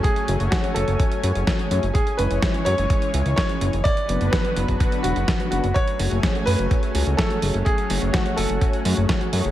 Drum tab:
HH |xxxxxxxxxxxxxxxx|xxxxxxxxxxxxxxxx|xxxxxxxxxxxxxxxx|xxoxxxoxxxoxxxox|
SD |----o-------o---|----o-------o---|----o-------o---|----o-------o---|
BD |o---o---o---o---|o---o---o---o---|o---o--oo---o---|o---o---o---o---|

HH |xxoxxxoxxxoxxxox|
SD |----o-------o---|
BD |o---o---o---o---|